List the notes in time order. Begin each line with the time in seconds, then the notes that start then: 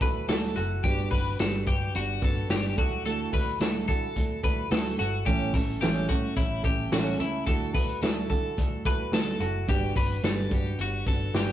0.01 D2 E4 F#4 A4 B4, kick, hi-hat pedal, open hi-hat, tambourine
0.28 D2 D3 A3 E4 F#4 A4, snare, hi-hat pedal, open hi-hat, tambourine
0.56 F#1 E4 F#4 A4, hi-hat pedal, open hi-hat, tambourine
0.84 G1 G3 D4 F#4 G4 B4, kick, hi-hat pedal, open hi-hat, tambourine
1.11 G1 D4 F#4 B4, kick, hi-hat pedal, open hi-hat, tambourine
1.39 G1 G3 D4 F#4 A4 B4, snare, hi-hat pedal, open hi-hat, tambourine
1.66 G2 D4 F#4 G4 B4, kick, hi-hat pedal, open hi-hat, tambourine
1.94 G1 G3 D4 F#4 B4, hi-hat pedal, open hi-hat, tambourine
2.22 G1 D4 F#4 A4 B4, kick, hi-hat pedal, open hi-hat, tambourine
2.49 G1 G3 D4 F#4 G4 B4, snare, hi-hat pedal, open hi-hat, tambourine
2.77 D2 E4 F#4 A4, kick, hi-hat pedal, open hi-hat, tambourine
3.05 D3 A3 E4 F#4 A4, hi-hat pedal, open hi-hat
3.31 D2 E4 F#4 A4 B4, kick, hi-hat pedal, open hi-hat, tambourine
3.60 D2 D3 A3 E4 F#4 A4, snare, hi-hat pedal, open hi-hat, tambourine
3.89 D3 E4 F#4 A4, kick, hi-hat pedal, open hi-hat
4.16 D2 A3 E4 F#4 A4, kick, hi-hat pedal, open hi-hat, tambourine
4.43 D2 E4 F#4 A4 B4, kick, hi-hat pedal, open hi-hat, tambourine
4.70 D2 D3 A3 E4 F#4 A4, snare, hi-hat pedal, open hi-hat, tambourine
4.98 G1 E4 F#4 A4, hi-hat pedal, open hi-hat, tambourine
5.25 A1 A2 E3 A3 C#4 E4 G4 A4, kick, hi-hat pedal, open hi-hat, tambourine
5.54 A1 A3 C#4 E4 A4, kick, snare, hi-hat pedal, open hi-hat, tambourine
5.81 A1 A2 E3 A3 C#4 E4 G4 A4, snare, hi-hat pedal, open hi-hat, tambourine
6.09 A2 A3 C#4 E4 F#4 A4, kick, hi-hat pedal, open hi-hat, tambourine
6.36 A1 A3 C#4 E4 A4, kick, hi-hat pedal, open hi-hat, tambourine
6.63 A1 A3 C#4 E4 G4 A4, kick, hi-hat pedal, open hi-hat, tambourine
6.91 A1 A2 E3 A3 C#4 E4 F#4 A4, snare, hi-hat pedal, open hi-hat, tambourine
7.18 C#2 A3 C#4 E4 A4, hi-hat pedal, open hi-hat, tambourine
7.46 D2 D3 A3 E4 F#4 A4, kick, hi-hat pedal, open hi-hat, tambourine
7.73 D2 E4 F#4 A4 B4, kick, hi-hat pedal, open hi-hat, tambourine
8.02 D2 D3 A3 E4 F#4 A4, snare, hi-hat pedal, open hi-hat, tambourine
8.30 D3 E4 F#4 A4, kick, hi-hat pedal, open hi-hat, tambourine
8.57 D2 A3 E4 F#4 A4, kick, hi-hat pedal, open hi-hat, tambourine
8.85 D2 E4 F#4 A4 B4, kick, hi-hat pedal, open hi-hat, tambourine
9.12 D2 D3 A3 E4 F#4 A4, snare, hi-hat pedal, open hi-hat, tambourine
9.40 F#1 E4 F#4 A4, hi-hat pedal, open hi-hat, tambourine
9.67 G1 G3 D4 F#4 G4 B4, kick, hi-hat pedal, open hi-hat
9.95 G1 D4 F#4 B4, kick, hi-hat pedal, open hi-hat, tambourine
10.23 G1 G3 D4 F#4 A4 B4, snare, hi-hat pedal, open hi-hat, tambourine
10.51 G2 D4 F#4 G4 B4, kick, hi-hat pedal, open hi-hat, tambourine
10.79 G1 G3 D4 F#4 B4, hi-hat pedal, open hi-hat, tambourine
11.06 G1 D4 F#4 A4 B4, kick, hi-hat pedal, open hi-hat, tambourine
11.34 G1 G3 D4 F#4 G4 B4, snare, hi-hat pedal, open hi-hat, tambourine